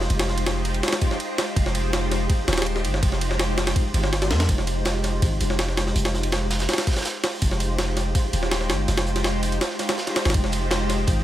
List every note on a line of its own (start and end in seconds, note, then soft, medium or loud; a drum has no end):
0.01 snare soft
0.10 0.82 F1 loud
0.10 0.99 G#3 loud
0.10 0.99 D#4 loud
0.10 0.99 F4 medium
0.10 0.99 G4 medium
0.10 0.99 C5 loud
0.10 ride medium
0.19 snare loud
0.19 ride medium
0.28 snare soft
0.38 ride medium
0.46 snare loud
0.46 ride medium
0.65 ride medium
0.74 ride soft
0.83 snare medium
0.83 ride medium
0.88 snare medium
0.88 ride medium
0.93 snare loud
0.93 ride medium
1.01 kick loud
1.01 ride medium
1.11 snare soft
1.20 ride medium
1.38 snare loud
1.38 ride medium
1.56 2.28 F1 loud
1.56 2.46 G#3 loud
1.56 2.46 D#4 loud
1.56 2.46 F4 medium
1.56 2.46 G4 loud
1.56 2.46 C5 loud
1.56 kick loud
1.56 ride medium
1.66 snare medium
1.75 ride medium
1.93 snare loud
1.93 ride medium
2.11 snare soft
2.11 ride medium
2.30 kick loud
2.30 ride medium
2.48 2.86 D#1 medium
2.48 snare medium
2.48 ride medium
2.53 snare medium
2.53 ride medium
2.58 snare medium
2.58 ride medium
2.62 snare medium
2.62 ride medium
2.66 ride medium
2.76 snare soft
2.84 3.01 G1 medium
2.84 ride medium
2.94 snare soft
3.02 3.74 F1 loud
3.02 3.92 G#3 loud
3.02 3.92 D#4 medium
3.02 3.92 F4 medium
3.02 3.92 G4 medium
3.02 3.92 C5 loud
3.02 kick loud
3.02 ride medium
3.12 snare soft
3.21 ride medium
3.31 snare soft
3.39 snare loud
3.39 ride medium
3.58 snare loud
3.58 ride medium
3.67 snare loud
3.67 ride medium
3.76 kick loud
3.76 ride medium
3.94 4.32 G1 loud
3.94 ride medium
4.04 snare medium
4.13 snare loud
4.13 ride medium
4.22 snare loud
4.22 ride medium
4.31 4.47 F2 medium
4.31 snare loud
4.31 ride medium
4.40 snare loud
4.40 ride medium
4.48 5.21 F1 loud
4.48 5.38 G#3 loud
4.48 5.38 D#4 medium
4.48 5.38 F4 loud
4.48 5.38 G4 loud
4.48 5.38 C5 loud
4.48 kick loud
4.48 closed hi-hat medium
4.48 ride medium
4.58 snare medium
4.67 closed hi-hat medium
4.67 ride medium
4.85 snare loud
4.85 closed hi-hat medium
4.85 ride medium
5.04 snare soft
5.04 closed hi-hat medium
5.04 ride medium
5.22 5.39 G#1 medium
5.22 kick loud
5.22 closed hi-hat medium
5.22 ride medium
5.40 5.94 F1 medium
5.40 closed hi-hat medium
5.40 ride medium
5.50 snare soft
5.59 snare loud
5.59 closed hi-hat medium
5.59 ride medium
5.68 snare soft
5.77 snare loud
5.77 closed hi-hat medium
5.77 ride medium
5.87 snare soft
5.95 6.67 F1 loud
5.95 6.85 G#3 loud
5.95 6.85 D#4 medium
5.95 6.85 F4 medium
5.95 6.85 G4 medium
5.95 6.85 C5 loud
5.95 closed hi-hat medium
5.95 ride medium
6.05 snare loud
6.05 ride medium
6.14 snare soft
6.14 closed hi-hat medium
6.23 ride medium
6.32 snare loud
6.32 closed hi-hat medium
6.32 ride medium
6.50 snare loud
6.50 closed hi-hat medium
6.50 ride medium
6.59 snare loud
6.59 closed hi-hat medium
6.59 ride soft
6.69 snare loud
6.69 snare medium
6.69 closed hi-hat medium
6.69 ride medium
6.73 snare medium
6.73 ride medium
6.78 snare loud
6.78 snare medium
6.78 closed hi-hat medium
6.78 ride medium
6.87 kick loud
6.87 snare loud
6.87 closed hi-hat medium
6.87 ride medium
6.91 snare medium
6.91 closed hi-hat medium
6.96 snare soft
6.96 snare medium
6.96 closed hi-hat medium
7.01 snare medium
7.01 closed hi-hat medium
7.05 snare loud
7.05 closed hi-hat medium
7.05 ride medium
7.24 snare loud
7.24 open hi-hat medium
7.24 ride medium
7.42 8.14 F1 medium
7.42 8.31 G#3 loud
7.42 8.31 D#4 loud
7.42 8.31 F4 loud
7.42 8.31 G4 loud
7.42 8.31 C5 loud
7.42 kick loud
7.42 closed hi-hat medium
7.42 ride medium
7.51 snare medium
7.60 closed hi-hat medium
7.60 ride medium
7.78 snare loud
7.78 closed hi-hat medium
7.78 ride medium
7.97 snare soft
7.97 closed hi-hat medium
7.97 ride medium
8.15 kick loud
8.15 closed hi-hat loud
8.15 ride medium
8.33 8.71 D#1 loud
8.33 closed hi-hat medium
8.33 ride medium
8.43 snare soft
8.51 snare loud
8.51 closed hi-hat medium
8.51 ride medium
8.61 snare soft
8.69 8.86 G1 medium
8.69 snare loud
8.69 closed hi-hat medium
8.69 ride medium
8.88 9.60 F1 medium
8.88 9.77 G#3 loud
8.88 9.77 D#4 medium
8.88 9.77 F4 medium
8.88 9.77 G4 medium
8.88 9.77 C5 loud
8.88 snare soft
8.88 closed hi-hat medium
8.88 ride medium
8.97 snare loud
8.97 ride medium
9.06 closed hi-hat medium
9.16 snare soft
9.16 ride medium
9.24 snare loud
9.24 closed hi-hat medium
9.24 ride medium
9.43 closed hi-hat medium
9.43 ride medium
9.52 closed hi-hat soft
9.52 ride soft
9.61 snare loud
9.61 closed hi-hat medium
9.61 ride medium
9.70 snare soft
9.79 snare soft
9.79 closed hi-hat medium
9.79 ride medium
9.89 snare loud
9.89 ride medium
9.98 snare loud
9.98 closed hi-hat medium
10.07 snare soft
10.07 ride medium
10.16 snare loud
10.16 open hi-hat medium
10.16 ride medium
10.25 10.33 G1 loud
10.25 snare medium
10.25 ride medium
10.30 11.23 G#3 loud
10.30 11.23 D#4 loud
10.30 11.23 F4 loud
10.30 11.23 G4 loud
10.30 11.23 C5 loud
10.30 snare medium
10.30 closed hi-hat medium
10.30 ride medium
10.34 11.06 F1 medium
10.34 kick loud
10.34 ride medium
10.44 snare medium
10.52 closed hi-hat medium
10.52 ride medium
10.71 snare loud
10.71 closed hi-hat medium
10.71 ride medium
10.89 snare soft
10.89 closed hi-hat medium
10.89 ride medium
11.07 11.24 G#1 medium
11.07 kick loud
11.07 closed hi-hat medium
11.07 ride medium